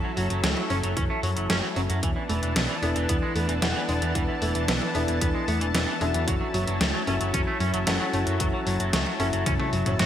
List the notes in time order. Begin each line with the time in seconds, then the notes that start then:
Already playing: E3 F#3 C#4 E4 A4
0.04 F#3
0.17 F#1 F#3, open hi-hat
0.30 F#1 F#3, closed hi-hat
0.44 C#2 F#3 A3, snare, closed hi-hat
0.57 F#3, snare
0.70 F#1 C#4, open hi-hat
0.83 F#1 F#3, closed hi-hat
0.97 F#1 E3 C#4, kick, closed hi-hat
1.10 A3
1.23 F#2 F#3, open hi-hat
1.36 F#1 F#3, closed hi-hat
1.50 F#1 A3 C#4, snare, closed hi-hat
1.63 F#3
1.76 F#1 F#3 C#4, open hi-hat
1.90 F#2 F#3, closed hi-hat
2.03 E1 E3 B3 D4 A5, kick, closed hi-hat
2.16 E3
2.29 E1 E3 A3, open hi-hat
2.43 E1 E3, closed hi-hat
2.56 B1 E3 B3, snare, closed hi-hat
2.69 E3
2.82 E1 E3 B3 D4 E4 A4 B4 E5, open hi-hat
2.96 E1 E3, closed hi-hat
3.09 E1 E3 B3, kick, closed hi-hat
3.22 G#3
3.36 E2 A3 B3, open hi-hat
3.49 E1 E3, closed hi-hat
3.62 E1 E3 B3 D4 E4 A4 B4 F#5, snare, closed hi-hat
3.75 E3
3.89 E1 G#3 D4, open hi-hat
4.02 E2 E3, closed hi-hat
4.15 E1 E3, kick, closed hi-hat
4.29 E3
4.42 E1 E3 A3, open hi-hat
4.55 E1 E3, closed hi-hat
4.68 B1 E3 B3, snare, closed hi-hat
4.82 E3, snare
4.95 E1 E3 B3 D4 E4 A4 B4 E5, open hi-hat
5.08 E1 E3, closed hi-hat
5.21 E1 E3 B3, kick, closed hi-hat
5.35 G#3
5.48 E2 A3 B3, open hi-hat
5.61 E1 E3, closed hi-hat
5.74 E1 E3 B3, snare, closed hi-hat
5.88 E3
6.01 E1 F#3 G#3 C#4 D4 E4 F#4 A4 E5, open hi-hat
6.14 E2 E3, closed hi-hat
6.28 F#1 E3 F#3 C#4 E4, kick, closed hi-hat
6.41 F#3
6.54 F#1 F#3, open hi-hat
6.67 F#1 F#3, closed hi-hat
6.81 C#2 F#3 A3, snare, closed hi-hat
6.94 F#3
7.07 F#1 F#3 C#4 E4 F#4 A4 E5, open hi-hat
7.21 F#1 F#3, closed hi-hat
7.34 F#1 E3 C#4, kick, closed hi-hat
7.47 A3
7.60 F#2 F#3 C#4, open hi-hat
7.74 F#1 F#3, closed hi-hat
7.87 F#1 F#3 A3 C#4 E4 F#4 A4 F#5, snare, closed hi-hat
8.00 F#3
8.13 F#1 A3 C#4, open hi-hat
8.27 F#2 F#3, closed hi-hat
8.40 F#1 E3 F#3, kick, closed hi-hat
8.53 F#3
8.67 F#1 F#3, open hi-hat
8.80 F#1 F#3, closed hi-hat
8.93 C#2 F#3 A3, snare, closed hi-hat
9.06 F#3, snare
9.20 F#1 F#3 C#4 E4 F#4 A4 E5, open hi-hat
9.33 F#1 F#3, closed hi-hat
9.46 F#1 E3 C#4, kick, closed hi-hat, high tom
9.60 A3, high tom
9.73 F#1 F#3, open hi-hat
9.86 F#1 F#3, closed hi-hat, mid tom
9.99 F#1 A3 F#4, snare, closed hi-hat, mid tom